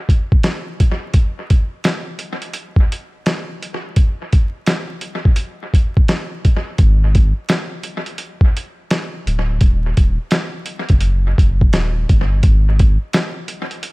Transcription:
0.09 kick, closed hi-hat
0.32 kick
0.43 snare, closed hi-hat
0.80 kick, closed hi-hat
1.14 kick, closed hi-hat
1.50 kick, closed hi-hat
1.84 snare, closed hi-hat
2.19 closed hi-hat
2.42 closed hi-hat
2.53 closed hi-hat
2.76 kick
2.92 closed hi-hat
3.26 snare, closed hi-hat
3.62 closed hi-hat
3.96 kick, closed hi-hat
4.33 kick, closed hi-hat
4.66 snare, closed hi-hat
5.01 closed hi-hat
5.25 kick
5.36 closed hi-hat
5.74 kick, closed hi-hat
5.97 kick
6.08 snare, closed hi-hat
6.45 kick, closed hi-hat
6.78 G#1, kick, closed hi-hat
7.15 kick, closed hi-hat
7.49 snare, closed hi-hat
7.83 closed hi-hat
8.06 closed hi-hat
8.18 closed hi-hat
8.41 kick
8.57 closed hi-hat
8.91 snare, closed hi-hat
9.26 D1, closed hi-hat
9.61 D#1, kick, closed hi-hat
9.97 D#1, kick, closed hi-hat
10.31 snare, closed hi-hat
10.66 closed hi-hat
10.89 F#1, kick, closed hi-hat
11.00 closed hi-hat
11.38 F#1, kick, closed hi-hat
11.61 kick
11.73 D#1, snare, closed hi-hat
12.09 G1, kick, closed hi-hat
12.43 G#1, kick, closed hi-hat
12.79 kick, closed hi-hat
13.13 snare, closed hi-hat
13.48 closed hi-hat
13.71 closed hi-hat
13.83 closed hi-hat

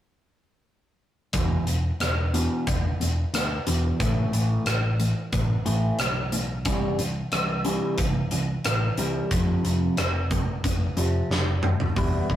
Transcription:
1.33 E1 E2 B2 E3, kick, closed hi-hat
1.67 E1 E2 B2, closed hi-hat
2.00 E1 E2 B2, cross-stick, closed hi-hat
2.34 E2 B2 E3, closed hi-hat
2.67 E1 E2 B2, kick, closed hi-hat
3.00 E1 E2 B2, closed hi-hat
3.34 D2 E2 B2, cross-stick, closed hi-hat
3.67 E1 E2 B2 E3, closed hi-hat
4.00 A1 A2 E3 A3, kick, closed hi-hat
4.33 A1 A2 E3 A3, closed hi-hat
4.66 A1 A2 E3, cross-stick, closed hi-hat
5.00 A2 E3, closed hi-hat
5.32 A1 A2 E3, kick, closed hi-hat
5.66 A1 A2 E3 A3, closed hi-hat
5.99 B1 A2 E3, cross-stick, closed hi-hat
6.32 A2 E3, closed hi-hat
6.65 C2 C3 E3 G3, kick, closed hi-hat
6.99 C2 C3 E3, closed hi-hat
7.32 C2 C3 E3, cross-stick, closed hi-hat
7.65 C3 E3 G3, closed hi-hat
7.98 C2 C3 E3, kick, closed hi-hat
8.31 C2 C3 E3, closed hi-hat
8.65 A1 C3 E3, cross-stick, closed hi-hat
8.98 C2 C3 E3 G3, closed hi-hat
9.31 F1 F2 C3 F3, kick, closed hi-hat
9.64 F1 F2 C3 F3, closed hi-hat
9.97 F1 F2 C3, cross-stick, closed hi-hat
10.31 F2 C3, kick, closed hi-hat
10.64 F1 F2 C3, kick, closed hi-hat
10.97 F1 F2 C3 F3, closed hi-hat
11.30 F1 F2 C3, snare
11.63 F2 C3, mid tom
11.80 floor tom
11.96 E1 E2 B2 E3 G3 B3 E4, kick, open hi-hat
12.29 E1 E3 G3 B3 E4, kick

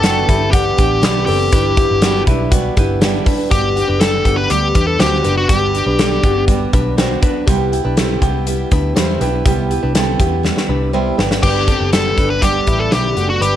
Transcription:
Already playing: F#1 A4
0.03 E3 B3 D4 F#4 G4, snare, closed hi-hat
0.29 G1 G3 B3 D4 E4 G4, kick, closed hi-hat
0.51 E3 B3 D4 G4 F#5, kick, closed hi-hat
0.77 A1 B3 D4 G4, kick, closed hi-hat
1.02 B1 E3 B3 D4 G4, snare, closed hi-hat
1.26 F#1 C4 G4 A4, open hi-hat
1.52 G1 G3 D4 E4 B4, kick, closed hi-hat
1.77 B3 D4 E4 G4 B4, kick, closed hi-hat
1.91 G1
2.02 G3 B3 D4 E4 F#4 B4, snare, closed hi-hat
2.27 B1 G3 D4 E4 B4, kick, closed hi-hat
2.51 G3 B3 D4 E4 F#4 B4, kick, closed hi-hat
2.77 G1 B3 D4 E4 G4 B4, kick, closed hi-hat
3.01 G3 B3 D4 E4 G4 B4, snare, closed hi-hat
3.26 D4 B4, kick, open hi-hat
3.50 G1 G3 B3 F#4 G4, kick, closed hi-hat
3.54 D4
3.76 B3 D4 F#4, closed hi-hat
3.88 F#1 D4 B4
3.99 G3 B3 D4 F#4 A4, snare, closed hi-hat
4.25 G1 B3 D4 F#4 G4, kick, closed hi-hat
4.37 B4
4.50 D2 G3 B3 D4 G4, closed hi-hat
4.75 E2 D4 B4, kick, closed hi-hat
4.87 A4
4.99 D2 G3 B3 D4 F#4 G4 C5, snare, closed hi-hat
5.24 F#1 B3 D4 F#4 B4, closed hi-hat
5.37 F#4
5.48 G1 G3 B3 D4 F#4 G4, kick, closed hi-hat
5.74 B3 D4 F#4, closed hi-hat
5.86 B1 D4 B4
5.99 G3 B3 D4 F#4 A4, snare, closed hi-hat
6.24 G1 B3 D4 F#4 G4, kick, closed hi-hat
6.48 G3 B3 D4 F#4, kick, closed hi-hat
6.73 B1 D4 B4, kick, closed hi-hat
6.98 G3 B3 D4 F#4 C5, snare, closed hi-hat
7.22 B3 D4 F#4 B4, kick, closed hi-hat
7.47 C2 C3 G3 B3 E4 G4, kick, closed hi-hat
7.72 B3 E4 G4, closed hi-hat
7.85 B1 D4 B4
7.97 C3 G3 B3 C4 E4 G4 A4, snare, closed hi-hat
8.21 C2 B3 E4 G4, kick, closed hi-hat
8.46 G3 B3 E4 G4, closed hi-hat
8.71 D2 D4 B4, kick, closed hi-hat
8.96 E2 C3 G3 B3 E4 G4 C5, snare, closed hi-hat
9.21 B1 B3 D4 E4 G4 B4, closed hi-hat
9.46 C2 C3 G3 B3 E4 G4, kick, closed hi-hat
9.71 B3 E4 G4, closed hi-hat
9.83 C2 D4 B4
9.95 C3 G3 B3 C4 E4 G4 A4, snare, closed hi-hat
10.20 E2 B3 E4 G4, kick, closed hi-hat
10.43 G3 B3 E4 G4, snare
10.57 snare
10.69 C2 D4 B4
10.93 C3 G3 B3 E4 G4 C5
11.18 G1 B3 D4 G4 B4, snare
11.31 snare
11.43 G1 G2 D3 G3 B3 D4 G4 B4, kick, crash
11.68 G3 B3 C4 D4 A4, kick, closed hi-hat
11.80 F#1
11.93 D3 G3 B3 D4 G4 A4, snare, closed hi-hat
12.17 G1 G3 B3 D4 B4, kick, closed hi-hat
12.30 B4
12.42 G2 D3 G3 B3 D4 G4, kick, closed hi-hat
12.67 A1 G3 E4, kick, closed hi-hat
12.79 A4
12.92 B1 D3 G3 B3 D4 G4, snare, closed hi-hat
13.17 F#1 A3 F#4, closed hi-hat
13.30 F#4
13.40 G1 G2 D3 G3 B3 D4 G4 B4, closed hi-hat

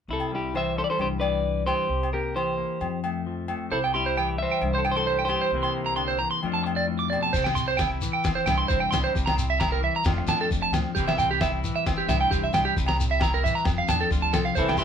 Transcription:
0.08 C2 C3 E4
0.13 A4
0.20 low agogo
0.32 G3 E4 G4
0.54 E3 C5 E5, low agogo
0.76 G3 A4 C5
0.84 D5
0.90 A4 C5
0.98 C2 G2 G4 C5, low agogo
1.20 E3 B4 D5, low agogo
1.66 E3 G4 C5, low agogo
1.89 C2 C3
2.03 low agogo
2.13 A#3 G4 A#4
2.35 E3 G4 C5, low agogo
2.57 A#3
2.81 F2, low agogo
3.04 A3, low agogo
3.27 F3
3.48 A3, low agogo
3.70 C2 C3 E4 A4 C5
3.84 G5, low agogo
3.94 G3 E4 G4 C6
4.06 C5
4.17 E3 G5, low agogo
4.38 G3 E5
4.42 C5
4.51 G5
4.61 C2 G2, low agogo
4.74 C5
4.78 A4
4.85 E3 G5, low agogo
4.91 C5
4.96 A4 C6
5.07 G3 C5
5.19 G5
5.25 C5, low agogo
5.29 E3 G4 C6
5.41 C5
5.51 C2 C3 E3 A#3 C4
5.56 E4
5.63 C6, low agogo
5.76 A#3
5.86 A#5
5.96 D3 C6, low agogo
6.08 C5
6.19 E3 A#5
6.31 C6
6.42 F2 F3 A3 D4 F4, low agogo
6.54 A5
6.64 A3, muted clean electric guitar stroke, low agogo
6.76 D5
6.87 A2
6.99 D6
7.10 B2 D5, low agogo
7.23 A5
7.33 C2 C3 C5, kick, crash, shekere
7.44 G5, snare, low agogo
7.55 C6, shekere
7.68 C5
7.77 E4 G5, kick, snare, low agogo, shekere
8.02 E3, shekere
8.13 G5
8.24 C4, kick, snare, low agogo, shekere
8.35 C5
8.46 C2 G2 E4 G5, snare, low agogo, shekere
8.58 C6
8.68 C2 C4 C5, kick, shekere
8.80 G5
8.91 C2 G3 C6, snare, low agogo, shekere
9.04 C5
9.13 C2 C3, kick, shekere
9.26 A#5, snare, low agogo
9.37 C4, shekere
9.50 E5
9.60 E4 A#5, kick, snare, low agogo, shekere
9.72 A#4
9.81 E3 E5
9.96 A#5
10.04 F2 F3 A3 D4 F4, kick, snare, low agogo, shekere
10.18 muted clean electric guitar stroke
10.27 F2 D4 A5, snare, low agogo, shekere
10.41 A4
10.51 F2, muted clean electric guitar stroke, kick, shekere
10.62 A5
10.72 D2 F3, snare, low agogo, shekere
10.95 C2 C3 E3 G3 G4, kick, shekere
10.99 C4 E4
11.07 E5, snare, low agogo
11.18 C4 G5, shekere
11.31 G4
11.41 E4 E5, kick, snare, low agogo, shekere
11.64 E3, shekere
11.76 E5
11.86 C4, kick, snare, low agogo, shekere
11.98 G4
12.08 C2 G2 E4 E5, snare, low agogo, shekere
12.21 G5
12.31 C2 C4 G4, kick, shekere
12.44 E5
12.53 C2 G3 G5, snare, low agogo, shekere
12.65 G4
12.77 C2 C3, kick, shekere
12.86 A#5, snare, low agogo
13.00 shekere
13.11 E5, shekere
13.20 E4 A#5, kick, snare, low agogo, shekere
13.34 A#4
13.43 E3 E5, shekere
13.55 A#5, shekere
13.65 F2, kick, snare, low agogo, shekere
13.78 F5
13.88 E2 D4 A5, snare, low agogo, shekere
14.01 A4
14.11 D2 F4, kick, snare, shekere
14.22 A5
14.33 C2 F3 A4, snare, low agogo, shekere
14.45 F5, shekere
14.55 C2 C3 E3 G3 C4 E4 A4 C5, kick, shekere
14.61 muted clean electric guitar stroke
14.68 G5, snare, low agogo
14.78 E3 E4 G4 C6, shekere

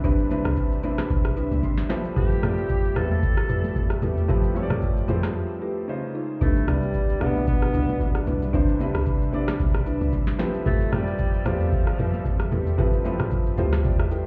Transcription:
Already playing: C3 D3 G3 C4 D4 E4 B4 E5
0.03 C2 C3 C4 D4 E4 B4, kick, shaker
0.19 shaker
0.30 C3 C4 D4 E4 B4, high conga, shaker
0.45 C2, cross-stick, shaker
0.57 kick, shaker
0.72 shaker
0.83 A1 D3 C4 D4 E4 B4, high conga, low conga, shaker
0.98 cross-stick, snare, high conga, shaker
1.10 B1, kick, shaker
1.25 cross-stick, shaker
1.36 D4 E4 B4, shaker
1.51 C2, high conga, shaker
1.63 C6, kick, low conga, shaker
1.78 snare, shaker
1.89 F3 G3 A3 C4 E4 G4 A4 B4 C5, snare, high conga, low conga, shaker
2.05 shaker
2.16 F2 E4 G4 A4 B4, kick, shaker
2.31 shaker
2.42 F2 F3 C4 E4 G4 A4 D5, cross-stick, high conga, shaker
2.58 shaker
2.69 kick, shaker
2.85 shaker
2.95 E2 C4 E4 F4 G4 A4 B4, cross-stick, high conga, low conga, shaker
3.11 A4, high conga, shaker
3.22 kick, shaker
3.37 cross-stick, shaker
3.49 F2 E4 G4 A4 B4, shaker
3.64 high conga, shaker
3.76 kick, low conga, shaker
3.90 cross-stick, shaker
4.02 E2 E4 G4 A4 B4, high conga, low conga, shaker
4.17 shaker
4.28 F2 F3 C4 E4 G4 A4 B4, kick, shaker
4.44 shaker
4.55 F3 C4 E4 G4 A4 C#5, high conga, shaker
4.63 D5
4.70 F2, cross-stick, shaker
4.82 kick, shaker
4.97 shaker
5.08 F2 F3 C4 E4 G4 G#4 A4 B4 C5, high conga, low conga, shaker
5.16 A4
5.23 cross-stick, snare, high conga, shaker
5.61 E4 G4 A4 B4
5.88 C#3 G#3 C#4 D#4 F4 C5
6.14 D#4 F4 C5
6.40 C2 C3 D3 G3 A3 D4 E4 B4 E5, kick, shaker
6.56 shaker
6.67 C2 C3 G3 D4 E4 B4, cross-stick, high conga, shaker
6.82 shaker
6.94 kick, shaker
7.09 shaker
7.20 B1 B2 G3 B3 D4 E4 B4 D5, cross-stick, high conga, low conga, shaker
7.36 high conga, shaker
7.47 B3, kick, shaker
7.62 cross-stick, shaker
7.74 C2 D4 E4 B4, shaker
7.89 high conga, shaker
8.00 kick, low conga, shaker
8.15 cross-stick, shaker
8.27 B1 D4 E4 B4, high conga, low conga, shaker
8.42 shaker
8.53 C2 C3 G3 D4 E4 B4 C5, kick, shaker
8.68 shaker
8.79 C3 G3 D4 E4 B4, high conga, shaker
8.95 C2, cross-stick, shaker
9.06 kick, shaker
9.22 shaker
9.33 A1 G3 C4 D4 E4 B4 D5, high conga, low conga, shaker
9.48 cross-stick, snare, high conga, shaker
9.60 B1, kick, shaker
9.74 cross-stick, shaker
9.86 D4 E4 B4, shaker
10.01 C2, high conga, shaker
10.13 kick, low conga, shaker
10.27 snare, shaker
10.39 F3 G3 C4 E4 G4 A4 B4, snare, high conga, low conga, shaker
10.54 shaker
10.66 F2 A3 E4 G4 A4 B4, kick, shaker
10.81 shaker
10.92 F2 F3 G3 C4 E4 G4 A4 D5, cross-stick, high conga, shaker
11.07 shaker
11.19 kick, shaker
11.34 shaker
11.45 E2 F3 C4 E4 F4 G4 A4 B4 D5, cross-stick, high conga, low conga, shaker
11.60 high conga, shaker
11.72 kick, shaker
11.87 cross-stick, shaker
11.99 F2 E4 G4 A4 B4, shaker
12.13 high conga, shaker
12.25 kick, low conga, shaker
12.40 cross-stick, shaker
12.52 E2 E4 G4 A4 B4, high conga, low conga, shaker
12.67 shaker
12.78 F2 F3 C4 E4 G4 A4 B4, kick, shaker
12.93 shaker
13.04 F3 C4 E4 G4 A4 B4, high conga, shaker
13.19 F2, cross-stick, shaker
13.31 kick, shaker
13.46 shaker
13.57 D2 C4 E4 F4 G4 A4 B4 C5, high conga, low conga, shaker
13.73 cross-stick, snare, high conga, shaker
13.84 E2 D5, kick, shaker
13.99 E5, cross-stick, shaker
14.11 E4 G4 A4 B4 G5, shaker

